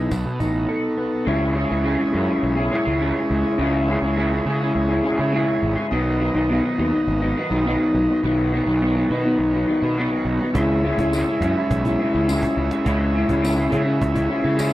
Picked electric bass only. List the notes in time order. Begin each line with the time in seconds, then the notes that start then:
0.11 B1
0.26 B2
0.40 A1
1.27 C#2
1.71 C#2
2.15 F#2
2.43 B1
2.87 C#2
3.31 C#2
3.59 C#2
4.02 C#2
4.46 C#3
4.76 C#2
5.19 C#3
5.63 G#1
5.92 B1
6.35 B1
6.79 D#2
7.08 G#1
7.51 B1
7.94 B1
8.24 B1
8.67 B1
9.10 B2
9.39 B1
9.82 B2
10.25 B1
10.55 C#2
10.98 C#2
11.41 F#2
11.71 B1
12.15 C#2
12.57 C#2
12.86 C#2
13.30 C#2
13.73 C#3
14.01 C#2
14.45 C#3